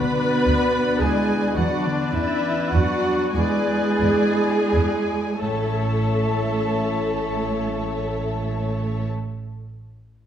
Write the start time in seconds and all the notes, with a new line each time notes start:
Already playing: D3 B3 D4 F#4 B4 D5 B5
0.46 D2 D4 D5
1.01 D2 G#3 D4 E4 F#4 G#4 D5 G#5
1.54 E2 E3 F#3 D4 F#4 B4 D5 F#5
1.83 D3 B3 D4 D5
2.13 E2 E3 C#4 D4 E4 D5 E5
2.70 E2 F#3 D4 E4 F#4 D5 F#5
3.33 E2 G#3 E4 G#4 D5 G#5
3.37 B4
4.01 E2 B4 D5
4.72 E2 E4 D5
5.40 A1 A2 A3 C#4 E4 A4 C#5 E5 A5
5.48 A3
5.55 C#4
5.63 E4
5.69 C#5